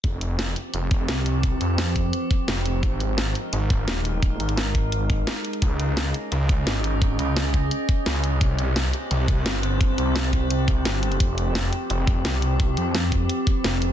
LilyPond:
<<
  \new Staff \with { instrumentName = "Synth drone" } { \time 4/4 \key f \minor \tempo 4 = 172 <f c' g'>1~ | <f c' g'>1 | <aes ees' bes'>1~ | <aes ees' bes'>1 |
<des' aes' ees''>1~ | <des' aes' ees''>1 | <c' g' c''>1~ | <c' g' c''>1 |
<f c' g'>1~ | <f c' g'>1 | }
  \new Staff \with { instrumentName = "Detuned saw bass" } { \clef bass \time 4/4 \key f \minor f,,4. r8 f,,4 c,4~ | c,8 f,4. r4 f,,4 | aes,,4. r8 aes,,4 ees,,4~ | ees,,8 aes,,4. aes,,4 r4 |
des,4. r8 des,4 aes,,4~ | aes,,8 des,4. r4 des,4 | c,4. r8 c,4 g,,4~ | g,,8 c,4. c,8 c,8 g,,4 |
f,,4. r8 f,,4 c,4~ | c,8 f,4. r4 f,,4 | }
  \new DrumStaff \with { instrumentName = "Drums" } \drummode { \time 4/4 <hh bd>8 hh8 <hh sn>8 hh8 hh8 <hh bd>8 <hh sn>8 hh8 | <hh bd>8 hh8 <hh sn>8 <hh bd>8 hh8 <hh bd>8 <hh sn>8 hh8 | <hh bd>8 hh8 <hh sn>8 hh8 hh8 <hh bd>8 <hh sn>8 hh8 | <hh bd>8 hh16 hh16 <hh sn>8 <hh bd>8 hh8 <hh bd>8 <hh sn>8 hh16 hh16 |
<hh bd>8 hh8 <hh sn>8 hh8 hh8 <hh bd>8 <hh sn>8 hh8 | <hh bd>8 hh8 <hh sn>8 <hh bd>8 hh8 <hh bd>8 <hh sn>8 hh8 | <hh bd>8 hh8 <hh sn>8 hh8 hh8 <hh bd>8 <hh sn>8 hh8 | <hh bd>8 hh8 <hh sn>16 hh16 <hh bd>8 hh8 <hh bd>8 <hh sn>8 hh16 hh16 |
<hh bd>8 hh8 <hh sn>8 hh8 hh8 <hh bd>8 <hh sn>8 hh8 | <hh bd>8 hh8 <hh sn>8 <hh bd>8 hh8 <hh bd>8 <hh sn>8 hh8 | }
>>